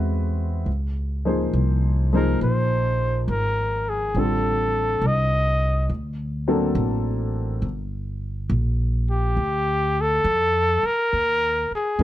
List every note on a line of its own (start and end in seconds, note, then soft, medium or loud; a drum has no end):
0.00 0.63 E2 medium
0.00 0.69 G#3 medium
0.00 0.69 C4 medium
0.00 0.69 E4 medium
0.00 0.69 F#4 medium
0.00 0.68 B4 medium
0.66 1.51 C#2 medium
1.25 2.07 F3 medium
1.25 2.07 A#3 soft
1.25 2.07 D#4 soft
1.25 2.07 G#4 soft
1.25 2.08 C5 medium
1.53 2.38 C2 medium
2.13 2.38 F3 medium
2.13 2.39 A#3 medium
2.13 2.39 D#4 medium
2.13 2.39 G#4 medium
2.13 2.41 A#4 medium
2.13 2.40 C5 medium
2.41 3.26 A#1 medium
2.41 3.25 C5 medium
3.28 4.12 G#1 medium
3.28 3.91 A#4 medium
3.89 4.21 G#4 medium
4.14 4.99 A1 medium
4.14 4.68 D3 soft
4.14 4.68 G3 soft
4.14 4.69 C4 soft
4.14 4.69 F4 soft
4.14 4.69 A4 soft
4.19 5.09 A4 medium
5.02 5.86 C2 medium
5.07 5.92 D#5 medium
5.89 6.74 D2 medium
6.48 6.74 F#3 medium
6.48 6.74 A#3 medium
6.48 6.74 C4 medium
6.48 6.75 D4 medium
6.48 6.74 A4 medium
6.75 7.60 A1 medium
7.62 8.47 G1 medium
8.50 9.35 A#1 medium
9.11 10.02 G4 medium
9.37 10.22 D2 medium
10.01 10.88 A4 medium
10.24 10.79 F2 medium
10.83 11.72 A#4 loud
10.83 muted upright bass stroke soft
11.13 11.67 D#2 medium
11.71 muted upright bass stroke soft
11.75 12.03 G#4 medium
11.98 12.03 F#2 medium
11.98 12.03 D#3 medium
11.98 12.03 G#3 soft
11.98 12.03 C#4 medium